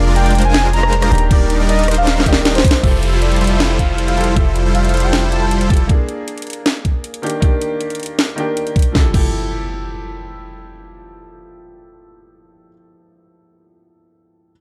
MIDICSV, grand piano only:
0, 0, Header, 1, 2, 480
1, 0, Start_track
1, 0, Key_signature, -1, "major"
1, 0, Tempo, 382166
1, 1642, Time_signature, 4, 2, 24, 8
1, 18348, End_track
2, 0, Start_track
2, 0, Title_t, "Grand piano"
2, 0, Program_c, 0, 0
2, 0, Control_c, 0, 64, 127
2, 0, Note_on_c, 0, 58, 84
2, 0, Note_on_c, 0, 62, 75
2, 0, Note_on_c, 0, 68, 91
2, 1361, Note_off_c, 0, 58, 0
2, 1374, Note_off_c, 0, 62, 0
2, 1387, Note_off_c, 0, 68, 0
2, 1389, Note_on_c, 0, 51, 76
2, 1397, Note_on_c, 0, 58, 75
2, 1406, Note_on_c, 0, 62, 70
2, 1414, Note_on_c, 0, 67, 87
2, 1420, Control_c, 0, 64, 0
2, 1597, Note_off_c, 0, 51, 0
2, 1602, Control_c, 0, 64, 127
2, 1611, Note_off_c, 0, 58, 0
2, 1616, Note_off_c, 0, 62, 0
2, 1616, Note_on_c, 0, 51, 83
2, 1620, Note_off_c, 0, 67, 0
2, 1633, Note_on_c, 0, 58, 77
2, 1650, Note_on_c, 0, 74, 73
2, 1666, Note_on_c, 0, 67, 89
2, 2797, Note_off_c, 0, 51, 0
2, 2813, Note_off_c, 0, 58, 0
2, 2815, Note_on_c, 0, 51, 83
2, 2822, Note_off_c, 0, 74, 0
2, 2830, Note_off_c, 0, 67, 0
2, 2832, Note_on_c, 0, 58, 76
2, 2866, Note_on_c, 0, 67, 96
2, 3520, Note_off_c, 0, 51, 0
2, 3529, Note_off_c, 0, 58, 0
2, 3537, Note_on_c, 0, 53, 79
2, 3546, Note_off_c, 0, 67, 0
2, 3554, Note_on_c, 0, 76, 73
2, 3570, Note_on_c, 0, 67, 71
2, 3578, Control_c, 0, 64, 0
2, 3587, Note_on_c, 0, 69, 89
2, 3793, Control_c, 0, 64, 127
2, 5201, Note_off_c, 0, 53, 0
2, 5210, Note_off_c, 0, 76, 0
2, 5218, Note_off_c, 0, 67, 0
2, 5226, Note_off_c, 0, 69, 0
2, 5230, Note_on_c, 0, 53, 74
2, 5238, Note_on_c, 0, 64, 69
2, 5246, Note_on_c, 0, 67, 67
2, 5255, Note_on_c, 0, 69, 81
2, 5438, Note_off_c, 0, 53, 0
2, 5452, Note_off_c, 0, 64, 0
2, 5456, Note_off_c, 0, 67, 0
2, 5457, Note_on_c, 0, 53, 78
2, 5460, Note_off_c, 0, 69, 0
2, 5475, Note_on_c, 0, 76, 69
2, 5491, Note_on_c, 0, 67, 70
2, 5508, Note_on_c, 0, 69, 84
2, 7121, Note_off_c, 0, 53, 0
2, 7130, Note_off_c, 0, 76, 0
2, 7138, Note_off_c, 0, 67, 0
2, 7147, Note_off_c, 0, 69, 0
2, 7150, Note_on_c, 0, 53, 71
2, 7158, Note_on_c, 0, 64, 64
2, 7166, Note_on_c, 0, 67, 65
2, 7175, Note_on_c, 0, 69, 84
2, 7368, Note_off_c, 0, 53, 0
2, 7372, Note_off_c, 0, 64, 0
2, 7376, Note_off_c, 0, 67, 0
2, 7376, Note_on_c, 0, 58, 76
2, 7380, Note_off_c, 0, 69, 0
2, 7402, Note_on_c, 0, 62, 70
2, 7415, Control_c, 0, 64, 0
2, 7427, Note_on_c, 0, 68, 81
2, 7647, Control_c, 0, 64, 127
2, 9041, Note_off_c, 0, 58, 0
2, 9054, Note_off_c, 0, 62, 0
2, 9066, Note_off_c, 0, 68, 0
2, 9069, Note_on_c, 0, 51, 72
2, 9077, Note_on_c, 0, 58, 66
2, 9085, Note_on_c, 0, 62, 65
2, 9094, Note_on_c, 0, 67, 78
2, 9096, Control_c, 0, 64, 0
2, 9277, Note_off_c, 0, 51, 0
2, 9291, Note_off_c, 0, 58, 0
2, 9295, Note_off_c, 0, 62, 0
2, 9296, Note_on_c, 0, 51, 76
2, 9300, Note_off_c, 0, 67, 0
2, 9313, Note_on_c, 0, 58, 70
2, 9329, Note_on_c, 0, 62, 69
2, 9346, Note_on_c, 0, 67, 83
2, 9351, Control_c, 0, 64, 127
2, 10477, Note_off_c, 0, 51, 0
2, 10494, Note_off_c, 0, 58, 0
2, 10496, Note_on_c, 0, 51, 77
2, 10502, Note_off_c, 0, 62, 0
2, 10510, Note_off_c, 0, 67, 0
2, 10513, Note_on_c, 0, 58, 73
2, 10530, Note_on_c, 0, 62, 71
2, 10546, Note_on_c, 0, 67, 83
2, 11201, Note_off_c, 0, 51, 0
2, 11205, Note_on_c, 0, 53, 75
2, 11209, Note_off_c, 0, 58, 0
2, 11218, Note_off_c, 0, 62, 0
2, 11226, Note_off_c, 0, 67, 0
2, 11229, Note_on_c, 0, 64, 70
2, 11255, Note_on_c, 0, 67, 73
2, 11256, Control_c, 0, 64, 0
2, 11279, Note_on_c, 0, 69, 90
2, 11358, Note_off_c, 0, 53, 0
2, 11371, Note_off_c, 0, 64, 0
2, 11385, Note_off_c, 0, 67, 0
2, 11398, Note_off_c, 0, 69, 0
2, 11444, Note_on_c, 0, 53, 83
2, 11469, Note_on_c, 0, 64, 75
2, 11488, Control_c, 0, 64, 127
2, 11495, Note_on_c, 0, 67, 75
2, 11520, Note_on_c, 0, 69, 91
2, 15908, Note_off_c, 0, 53, 0
2, 15933, Note_off_c, 0, 64, 0
2, 15959, Note_off_c, 0, 67, 0
2, 15984, Note_off_c, 0, 69, 0
2, 18235, Control_c, 0, 64, 0
2, 18348, End_track
0, 0, End_of_file